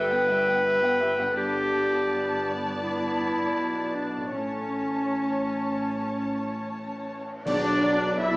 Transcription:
0.00 1.33 G1 medium
0.00 1.17 G2 medium
0.00 1.33 G2 medium
0.00 0.11 G3 medium
0.00 1.33 E4 soft
0.00 1.35 G4 soft
0.00 1.31 B4 soft
0.00 1.36 B4 loud
0.00 0.11 G5 medium
0.11 0.30 B3 medium
0.11 0.30 F#5 medium
0.11 0.30 G5 soft
0.29 0.48 G3 medium
0.29 0.47 E5 medium
0.29 0.49 G5 medium
0.47 0.66 B3 medium
0.47 0.67 F#5 medium
0.47 0.65 G5 soft
0.66 0.82 G3 medium
0.66 0.83 E5 medium
0.66 0.83 G5 medium
0.84 1.02 B3 soft
0.84 1.01 F#5 soft
0.84 1.01 G5 soft
1.01 1.19 G3 soft
1.01 1.19 E5 medium
1.01 1.20 G5 medium
1.19 4.29 G2 medium
1.19 1.35 B3 medium
1.19 1.37 F#5 soft
1.19 1.37 G5 medium
1.23 4.31 D4 soft
1.28 4.24 A4 soft
1.32 4.36 B4 soft
1.36 3.53 G1 medium
1.36 3.53 G2 soft
1.36 4.31 B3 medium
1.36 2.52 G4 medium
1.36 4.31 D5 medium
1.36 4.31 A5 medium
2.82 3.96 E4 medium
3.56 4.33 B1 soft
3.56 4.33 B2 soft
3.95 4.33 D4 medium
4.17 7.40 A2 soft
4.21 7.42 C#4 soft
4.26 7.45 A4 soft
4.30 6.64 C#4 medium
4.30 7.47 C#5 soft
4.34 7.26 A1 medium
4.34 7.26 A2 soft
4.34 7.25 C#4 soft
4.34 7.21 C#5 soft
4.34 7.22 A5 soft
7.46 8.37 B1 medium
7.46 8.37 B2 medium
7.46 8.17 F#3 medium
7.46 8.17 D4 medium
7.46 8.22 D5 medium
7.46 8.17 D5 medium
7.46 concert bass drum medium
7.46 crash medium
7.84 8.37 F#3 soft
8.20 8.37 F#3 medium
8.20 8.37 D4 medium
8.20 8.37 E4 medium
8.20 8.37 E5 medium

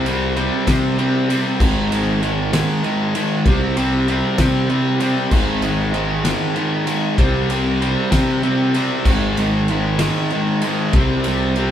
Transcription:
0.00 0.49 C2 loud
0.06 0.35 C3 medium
0.06 0.36 G3 medium
0.06 0.37 C4 medium
0.06 ride medium
0.36 0.66 C3 medium
0.36 0.67 G3 loud
0.36 0.68 C4 medium
0.36 ride medium
0.67 0.96 C3 medium
0.67 1.42 C3 loud
0.67 0.97 G3 medium
0.67 0.99 C4 loud
0.67 kick medium
0.67 snare loud
0.67 ride loud
0.98 1.28 C3 medium
0.98 1.28 G3 medium
0.98 1.29 C4 loud
0.98 ride medium
1.29 1.58 C3 medium
1.29 1.58 G3 medium
1.29 3.47 C4 loud
1.29 ride medium
1.60 2.60 G#1 loud
1.60 1.91 G#2 loud
1.60 1.91 D#3 loud
1.60 1.92 G#3 loud
1.60 kick loud
1.60 crash loud
1.92 2.20 G#2 medium
1.92 2.21 D#3 medium
1.92 2.21 G#3 medium
1.92 ride medium
2.21 2.52 G#2 medium
2.21 2.51 D#3 loud
2.21 2.52 G#3 loud
2.21 ride medium
2.53 2.82 G#2 medium
2.53 2.83 D#3 medium
2.53 2.83 G#3 loud
2.53 snare loud
2.53 ride loud
2.84 3.14 G#2 medium
2.84 3.14 D#3 medium
2.84 3.15 G#3 loud
2.84 ride medium
3.15 3.44 G#2 medium
3.15 3.44 D#3 loud
3.15 3.45 G#3 medium
3.15 ride medium
3.46 4.21 C2 loud
3.46 3.75 C3 loud
3.46 3.76 G3 loud
3.46 3.77 C4 loud
3.46 kick loud
3.46 ride loud
3.76 4.07 C3 medium
3.76 4.08 G3 medium
3.76 4.09 C4 loud
3.76 ride medium
4.08 4.37 C3 loud
4.08 4.38 G3 medium
4.08 4.40 C4 medium
4.08 ride medium
4.38 4.68 C3 medium
4.38 5.14 C3 medium
4.38 4.69 G3 medium
4.38 4.70 C4 loud
4.38 kick medium
4.38 snare loud
4.38 ride loud
4.70 4.99 C3 medium
4.70 4.99 G3 loud
4.70 5.01 C4 loud
4.70 ride medium
5.00 5.30 C3 loud
5.00 5.30 G3 medium
5.00 7.18 C4 loud
5.00 ride medium
5.31 6.33 G#1 loud
5.31 5.62 G#2 loud
5.31 5.62 D#3 loud
5.31 5.62 G#3 loud
5.31 kick loud
5.31 crash loud
5.62 5.92 G#2 medium
5.62 5.93 D#3 medium
5.62 5.93 G#3 medium
5.62 ride medium
5.93 6.23 G#2 medium
5.93 6.23 D#3 medium
5.93 6.24 G#3 loud
5.93 ride medium
6.24 6.54 G#2 medium
6.24 6.56 D#3 medium
6.24 6.56 G#3 medium
6.24 snare loud
6.24 ride loud
6.56 6.86 G#2 medium
6.56 6.86 D#3 medium
6.56 6.87 G#3 loud
6.56 ride medium
6.87 7.17 G#2 medium
6.87 7.16 D#3 medium
6.87 7.17 G#3 medium
6.87 ride medium
7.17 7.94 C2 loud
7.17 7.49 C3 loud
7.17 7.50 G3 loud
7.17 7.51 C4 loud
7.17 kick loud
7.17 ride loud
7.50 7.80 C3 medium
7.50 7.80 G3 medium
7.50 7.81 C4 medium
7.50 ride medium
7.81 8.10 C3 medium
7.81 8.11 G3 medium
7.81 8.12 C4 loud
7.81 ride medium
8.11 8.42 C3 medium
8.11 8.88 C3 loud
8.11 8.42 G3 medium
8.11 8.43 C4 loud
8.11 kick medium
8.11 snare loud
8.11 ride loud
8.43 8.74 C3 medium
8.43 8.75 G3 medium
8.43 8.76 C4 loud
8.43 ride medium
8.74 9.04 C3 loud
8.74 9.05 G3 medium
8.74 10.96 C4 medium
8.74 ride medium
9.05 10.07 G#1 loud
9.05 9.37 G#2 medium
9.05 9.37 D#3 loud
9.05 9.38 G#3 loud
9.05 kick loud
9.05 crash loud
9.37 9.69 G#2 medium
9.37 9.70 D#3 medium
9.37 9.70 G#3 medium
9.37 ride medium
9.68 9.99 G#2 medium
9.68 10.00 D#3 medium
9.68 10.01 G#3 loud
9.68 ride medium
9.99 10.31 G#2 medium
9.99 10.32 D#3 loud
9.99 10.33 G#3 medium
9.99 snare loud
9.99 ride loud
10.30 10.62 G#2 loud
10.30 10.63 D#3 loud
10.30 10.63 G#3 loud
10.30 ride medium
10.62 10.92 G#2 medium
10.62 10.93 D#3 medium
10.62 10.93 G#3 medium
10.62 ride medium
10.93 11.70 C2 loud
10.93 11.25 C3 loud
10.93 11.26 G3 loud
10.93 11.27 C4 loud
10.93 kick loud
10.93 ride loud
11.24 11.55 C3 medium
11.24 11.56 G3 medium
11.24 11.57 C4 medium
11.24 ride medium
11.56 11.71 C3 medium
11.56 11.71 G3 medium
11.56 11.71 C4 loud
11.56 ride medium

